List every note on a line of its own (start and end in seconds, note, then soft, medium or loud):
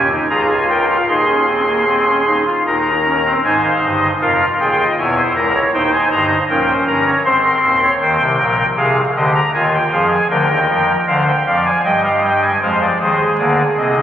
0.00 0.16 D#1 medium
0.00 0.16 D#2 medium
0.00 0.16 G4 medium
0.11 0.28 D#4 medium
0.30 0.97 C#1 medium
0.30 0.97 C#2 medium
0.30 0.97 F4 medium
0.30 0.54 G#4 medium
0.30 0.47 A#5 medium
0.49 0.66 G#5 medium
0.69 0.93 A#4 medium
0.69 0.86 G5 medium
0.89 1.06 F5 medium
1.08 2.44 D#1 medium
1.08 2.44 D#2 medium
1.08 1.25 D#4 medium
1.08 2.44 G#4 medium
1.08 2.44 C6 medium
1.28 1.45 C#4 medium
1.48 1.65 C4 soft
1.68 1.85 A#3 medium
1.87 2.04 C4 medium
2.07 2.24 C#4 medium
2.27 2.43 D#4 medium
2.46 2.63 F4 medium
2.66 3.33 D#1 medium
2.66 3.33 D#2 soft
2.66 2.90 D#4 medium
2.66 3.33 A#4 medium
2.66 3.33 A#5 medium
3.05 3.22 C#4 medium
3.25 3.41 C4 medium
3.44 3.68 G#1 medium
3.44 3.68 G#2 medium
3.44 4.11 D#4 medium
3.44 4.11 C5 medium
3.44 3.61 G#5 medium
3.64 3.80 F5 medium
3.83 4.07 G1 medium
3.83 4.07 G2 medium
3.83 4.07 D#5 medium
4.21 4.45 F1 medium
4.21 4.45 F2 medium
4.21 4.87 F4 medium
4.21 4.45 A#4 medium
4.21 4.45 F5 medium
4.60 4.83 D#1 medium
4.60 4.83 D#2 medium
4.60 4.76 G#4 medium
4.60 4.84 G5 medium
4.79 4.95 D#5 medium
4.98 5.21 E1 medium
4.98 5.21 E2 medium
4.98 5.63 E4 medium
4.98 5.14 C#5 medium
4.98 5.22 G#5 medium
5.17 5.33 C5 medium
5.36 5.59 C#1 medium
5.36 5.59 C#2 medium
5.36 5.52 A#4 medium
5.36 5.59 A#5 medium
5.55 5.71 C#5 medium
5.73 5.97 D#1 medium
5.73 5.97 D#2 medium
5.73 6.39 D#4 medium
5.73 6.39 C5 medium
5.73 5.90 G5 loud
5.92 6.09 G#5 medium
6.11 6.35 G1 medium
6.11 6.35 G2 medium
6.11 6.35 A#5 medium
6.49 6.73 A#1 medium
6.49 6.73 A#2 medium
6.49 7.14 C#4 medium
6.49 6.66 A#4 medium
6.49 6.73 G5 medium
6.68 6.84 C5 medium
6.87 7.11 G1 medium
6.87 7.11 G2 medium
6.87 7.04 A#4 medium
6.87 7.11 A#5 medium
7.06 7.22 C#5 medium
7.25 7.49 G#1 medium
7.25 7.49 G#2 medium
7.25 7.90 C4 medium
7.25 7.41 C5 medium
7.25 7.90 C6 medium
7.44 7.60 A#4 medium
7.63 7.86 D#1 medium
7.63 7.86 D#2 medium
7.63 7.79 C5 medium
7.82 7.98 C#5 medium
8.00 8.17 D#2 loud
8.00 8.17 D#3 loud
8.00 8.24 C5 medium
8.00 8.66 G5 medium
8.20 8.36 C2 medium
8.20 8.36 C3 medium
8.39 8.63 A#1 medium
8.39 8.63 A#2 medium
8.39 8.63 A#4 medium
8.77 9.01 C2 medium
8.77 9.01 C3 medium
8.77 9.01 G#4 medium
8.77 9.01 F5 medium
9.16 9.39 D2 medium
9.16 9.40 D3 medium
9.16 9.39 G4 medium
9.16 9.32 D#5 medium
9.35 9.51 A#5 medium
9.54 9.77 D#2 medium
9.54 9.77 D#3 loud
9.54 9.77 F4 medium
9.54 9.70 G#5 medium
9.73 9.90 G5 medium
9.92 10.16 F2 loud
9.92 10.16 F3 medium
9.92 10.16 G#4 medium
9.92 10.08 F5 medium
10.11 10.27 G#5 medium
10.30 10.46 D2 loud
10.30 10.47 D3 medium
10.30 10.97 A#4 medium
10.30 10.96 G5 medium
10.49 10.66 D#2 medium
10.49 10.66 D#3 medium
10.68 10.92 F2 medium
10.68 10.92 F3 medium
11.07 11.31 D2 medium
11.07 11.32 D3 medium
11.07 11.32 C5 medium
11.07 11.24 F5 medium
11.27 11.43 G5 medium
11.46 11.70 F2 medium
11.46 11.70 F3 medium
11.46 11.70 D5 medium
11.46 11.63 F5 medium
11.65 11.82 G#5 medium
11.85 12.51 G2 medium
11.85 12.51 G3 medium
11.85 12.51 D#5 medium
11.85 12.01 G5 medium
12.04 12.20 F5 medium
12.24 12.40 G5 medium
12.42 12.59 G#5 medium
12.62 12.86 F2 medium
12.62 12.86 F3 medium
12.62 13.28 G#3 medium
12.62 12.86 C5 medium
12.62 12.79 F5 medium
12.81 12.98 D5 medium
13.00 13.24 D#2 medium
13.00 13.24 D#3 medium
13.00 14.02 G#4 medium
13.00 13.24 C5 medium
13.39 13.63 D2 medium
13.39 13.63 D3 medium
13.39 13.63 A#3 medium
13.39 13.63 D5 medium
13.77 14.01 C2 medium
13.77 14.01 C3 medium
13.77 13.94 C4 medium
13.77 14.01 D#5 medium
13.97 14.02 D#4 medium